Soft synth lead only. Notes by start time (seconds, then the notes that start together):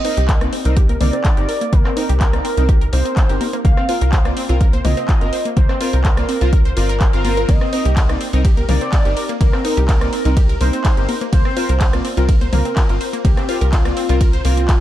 Already playing: D#5
1.01 D5
1.73 A#4
2.21 A#4
2.93 C5
3.65 F5
4.85 D#5
5.57 C5
6.05 A#4
6.77 A#4
7.49 D#5
8.69 D5
9.41 A#4
9.89 A#4
10.61 C5
11.33 C5
12.53 A#4
13.25 G4
13.73 F4
14.45 F4